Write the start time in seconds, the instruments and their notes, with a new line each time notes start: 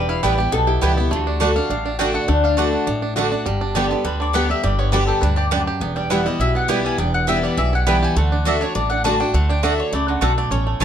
Already playing: upright bass E1, steel-string acoustic guitar E2, five-string banjo G3, resonator guitar played with a steel bar B4
0.09 five-string banjo E4, mandolin F5
0.23 upright bass A1, steel-string acoustic guitar E3 G3 B3 E4, five-string banjo G3, mandolin B3 E4 B4 G5
0.38 steel-string acoustic guitar B3 E4, five-string banjo G4
0.52 upright bass B1, steel-string acoustic guitar B2, five-string banjo B3, resonator guitar played with a steel bar A4
0.67 five-string banjo E4, resonator guitar played with a steel bar G4
0.81 upright bass C#2, steel-string acoustic guitar E3 G3 B3 E4, mandolin B3 E4 B4 G5, five-string banjo G4
0.97 five-string banjo B3, steel-string acoustic guitar B3 E4
1.11 upright bass D2, steel-string acoustic guitar D3, five-string banjo A3, resonator guitar played with a steel bar F#4
1.27 five-string banjo D4
1.40 steel-string acoustic guitar D3 A3 D4 F#4, mandolin A3 F#4 D5 F#5, five-string banjo A3
1.56 five-string banjo D4, steel-string acoustic guitar D4 F#4, mandolin F5
1.70 upright bass A1, steel-string acoustic guitar A2, five-string banjo D4
1.85 five-string banjo D4
1.99 steel-string acoustic guitar D3 A3 D4 F#4, mandolin A3 F#4 D5 F#5 G5, five-string banjo D4
2.14 five-string banjo D4, mandolin F#5
2.28 upright bass D2, steel-string acoustic guitar D3, five-string banjo A3, resonator guitar played with a steel bar D4
2.44 five-string banjo D4, mandolin F5
2.57 steel-string acoustic guitar D3 A3 D4 F#4, five-string banjo A3, mandolin A3 F#4 D5 F#5
2.73 five-string banjo D4
2.87 upright bass A1, steel-string acoustic guitar A2, five-string banjo D4
3.02 five-string banjo D4
3.16 steel-string acoustic guitar D3 A3 D4 F#4, mandolin A3 F#4 D5 F#5, five-string banjo D4, resonator guitar played with a steel bar F#4
3.32 five-string banjo D4, steel-string acoustic guitar D4 F#4
3.46 upright bass G1, steel-string acoustic guitar G2, five-string banjo G3
3.61 five-string banjo D4
3.75 steel-string acoustic guitar D3 G3 B3 G4, five-string banjo B3, mandolin B3 G4 D5 G5
3.91 five-string banjo D3, steel-string acoustic guitar B3 G4
4.04 upright bass D2, steel-string acoustic guitar D3, five-string banjo G3, mandolin B4
4.20 five-string banjo D3, mandolin D5
4.33 steel-string acoustic guitar D3 G3 B3 G4, mandolin B3 G4 D5 F#5 G5, five-string banjo B3
4.49 five-string banjo G3, steel-string acoustic guitar B3 G4, mandolin E5
4.63 upright bass G1, steel-string acoustic guitar G2, five-string banjo G3, mandolin D5
4.79 five-string banjo B3, mandolin C#5
4.92 steel-string acoustic guitar D3 G3 B3 G4, mandolin B3 G4 B4 D5 G5, five-string banjo D4
5.07 five-string banjo G4, mandolin A4
5.21 upright bass D2, steel-string acoustic guitar G2, five-string banjo D4, mandolin B4
5.36 five-string banjo G4, mandolin D5
5.51 steel-string acoustic guitar F#2, mandolin B3 G4 D5 G5, five-string banjo D4
5.67 five-string banjo G4
5.81 upright bass E1, steel-string acoustic guitar E2, five-string banjo B3
5.96 five-string banjo G3, mandolin G5
6.10 steel-string acoustic guitar E3 G3 B3 E4, mandolin B3 E4 B4 F#5 G5, five-string banjo E4
6.26 five-string banjo G3, steel-string acoustic guitar B3 E4, mandolin D#5
6.39 upright bass B1, steel-string acoustic guitar B2, five-string banjo E4, mandolin E5
6.55 five-string banjo B3, mandolin F#5
6.68 steel-string acoustic guitar E3 G3 B3 E4, mandolin B3 E4 B4 G5, five-string banjo G4
6.85 five-string banjo G3, mandolin G#5
6.98 upright bass E1, steel-string acoustic guitar E2, five-string banjo B3, mandolin G5
7.14 mandolin F#5
7.27 steel-string acoustic guitar E3 G3 B3 E4, mandolin B3 E4 B4 E5 G5, five-string banjo E4
7.43 five-string banjo G3, mandolin D5
7.57 upright bass B1, steel-string acoustic guitar B2, five-string banjo E3, mandolin E5
7.73 five-string banjo E4, mandolin F#5
7.86 steel-string acoustic guitar E3 G3 B3 E4, five-string banjo G3, mandolin B3 E4 B4 G5
8.03 five-string banjo G4, mandolin G#5
8.16 upright bass D2, steel-string acoustic guitar D3, five-string banjo A3, mandolin F#5
8.32 five-string banjo D4
8.45 steel-string acoustic guitar D3 A3 D4 F#4, mandolin A3 F#4 D5 E5 F#5, five-string banjo D4
8.61 five-string banjo D4, steel-string acoustic guitar D4 F#4, mandolin C#5
8.75 upright bass A1, steel-string acoustic guitar A2, five-string banjo D4, mandolin D5
8.90 five-string banjo D4, mandolin F#5
9.04 steel-string acoustic guitar D3 A3 D4 F#4, mandolin A3 F#4 D5 F#5 A5, five-string banjo D4
9.20 five-string banjo D4, steel-string acoustic guitar D4 F#4, mandolin G5
9.34 upright bass D2, steel-string acoustic guitar D3, five-string banjo A3, mandolin F#5
9.49 five-string banjo D4, mandolin G5
9.63 steel-string acoustic guitar D3 A3 D4 F#4, mandolin A3 F#4 D5 E5 F#5, five-string banjo D4
9.80 mandolin C#5
9.92 upright bass C#2, steel-string acoustic guitar C#3, five-string banjo A3, mandolin D5
10.08 five-string banjo D3, mandolin F#4
10.21 upright bass B1, steel-string acoustic guitar B2, mandolin A3 F#4 A4 D5 F#5, five-string banjo D4
10.38 five-string banjo A3, mandolin D5
10.51 upright bass A1, steel-string acoustic guitar A2, five-string banjo C#4, mandolin C#5
10.67 five-string banjo A3
10.80 upright bass A1, steel-string acoustic guitar E3 A3, mandolin A3 E4 C#5 A5, five-string banjo E4